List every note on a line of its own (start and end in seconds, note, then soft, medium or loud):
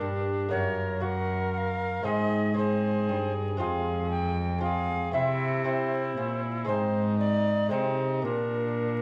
0.00 0.53 G2 medium
0.00 0.48 G2 soft
0.00 0.47 A#3 soft
0.00 0.48 D4 soft
0.00 0.54 D4 medium
0.00 0.24 A#4 medium
0.49 2.05 F#2 medium
0.49 0.99 A#3 soft
0.49 1.00 F#4 soft
0.49 1.02 A#4 medium
0.49 1.04 C#5 medium
0.53 2.02 F#2 medium
1.00 2.01 A#3 soft
1.00 2.02 F#4 soft
1.00 2.06 A#4 medium
1.00 1.53 F#5 medium
1.53 1.59 F#5 medium
1.58 2.04 F5 medium
2.02 3.09 G#2 medium
2.02 3.05 G#2 medium
2.02 2.54 G#3 soft
2.02 2.54 C4 soft
2.02 2.55 D#4 soft
2.02 2.56 G#4 medium
2.02 2.56 D#5 medium
2.54 3.55 C4 soft
2.54 3.56 D#4 soft
2.54 3.55 G#4 soft
2.54 3.58 G#4 medium
2.54 3.33 C5 medium
3.08 3.61 G2 medium
3.08 3.56 G2 soft
3.57 5.16 F2 medium
3.57 5.11 F2 medium
3.57 4.57 G#3 soft
3.57 4.59 C4 medium
3.57 4.59 F4 soft
3.57 4.07 F5 medium
3.62 4.34 G#4 medium
4.11 4.61 G5 medium
4.58 5.10 G#3 soft
4.58 5.10 C4 soft
4.58 5.12 F4 soft
4.58 5.12 F5 medium
4.64 5.11 G#4 medium
5.12 6.17 C3 medium
5.12 6.13 C3 medium
5.12 5.63 C4 soft
5.12 5.64 E4 medium
5.12 5.64 E5 medium
5.64 6.64 C4 soft
5.64 6.66 E4 medium
5.64 6.66 E4 soft
5.64 6.41 C5 medium
6.17 6.70 A#2 medium
6.17 6.65 A#2 medium
6.65 7.73 G#2 medium
6.65 7.68 G#2 medium
6.65 7.67 G#3 soft
6.65 7.68 C4 soft
6.65 7.68 D#4 soft
6.65 7.70 D#4 medium
6.65 7.16 C5 medium
7.19 7.70 D5 medium
7.69 8.25 C3 medium
7.69 8.21 C3 soft
7.69 8.21 G#3 soft
7.69 8.22 C4 soft
7.69 8.21 D#4 soft
7.69 8.23 D#4 medium
7.69 8.22 C5 medium
8.22 9.02 A#2 medium
8.22 9.02 A#2 soft
8.22 9.02 D4 soft
8.22 9.02 D4 medium
8.22 9.02 A#4 medium